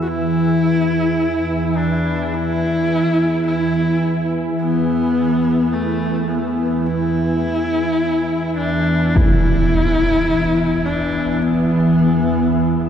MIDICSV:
0, 0, Header, 1, 5, 480
1, 0, Start_track
1, 0, Tempo, 1132075
1, 42, Time_signature, 4, 2, 24, 8
1, 5467, End_track
2, 0, Start_track
2, 0, Title_t, "Singing bowl"
2, 0, Program_c, 0, 14
2, 0, Note_on_c, 0, 71, 52
2, 3888, Note_off_c, 0, 71, 0
2, 5467, End_track
3, 0, Start_track
3, 0, Title_t, "Horsehead fiddle"
3, 0, Program_c, 1, 110
3, 9, Note_on_c, 1, 66, 65
3, 33, Note_on_c, 1, 64, 97
3, 39, Note_off_c, 1, 66, 0
3, 752, Note_on_c, 1, 62, 83
3, 759, Note_off_c, 1, 64, 0
3, 993, Note_on_c, 1, 64, 104
3, 999, Note_off_c, 1, 62, 0
3, 1468, Note_off_c, 1, 64, 0
3, 1470, Note_on_c, 1, 64, 88
3, 1819, Note_off_c, 1, 64, 0
3, 1954, Note_on_c, 1, 59, 90
3, 2429, Note_on_c, 1, 57, 84
3, 2436, Note_off_c, 1, 59, 0
3, 2663, Note_on_c, 1, 59, 72
3, 2669, Note_off_c, 1, 57, 0
3, 2702, Note_on_c, 1, 57, 62
3, 2708, Note_off_c, 1, 59, 0
3, 2735, Note_on_c, 1, 59, 74
3, 2742, Note_off_c, 1, 57, 0
3, 2912, Note_on_c, 1, 64, 89
3, 2918, Note_off_c, 1, 59, 0
3, 3632, Note_off_c, 1, 64, 0
3, 3634, Note_on_c, 1, 62, 82
3, 3882, Note_on_c, 1, 64, 101
3, 3888, Note_off_c, 1, 62, 0
3, 4602, Note_on_c, 1, 62, 86
3, 4608, Note_off_c, 1, 64, 0
3, 4841, Note_on_c, 1, 59, 82
3, 4848, Note_off_c, 1, 62, 0
3, 5467, Note_off_c, 1, 59, 0
3, 5467, End_track
4, 0, Start_track
4, 0, Title_t, "Synth drone"
4, 0, Program_c, 2, 95
4, 0, Note_on_c, 2, 40, 69
4, 0, Note_on_c, 2, 52, 65
4, 3881, Note_off_c, 2, 52, 0
4, 3884, Note_off_c, 2, 40, 0
4, 3886, Note_on_c, 2, 52, 74
4, 3889, Note_on_c, 2, 40, 70
4, 5467, Note_off_c, 2, 40, 0
4, 5467, Note_off_c, 2, 52, 0
4, 5467, End_track
5, 0, Start_track
5, 0, Title_t, "Impact"
5, 0, Program_c, 3, 103
5, 3882, Note_on_c, 3, 60, 76
5, 3978, Note_off_c, 3, 60, 0
5, 5467, End_track
0, 0, End_of_file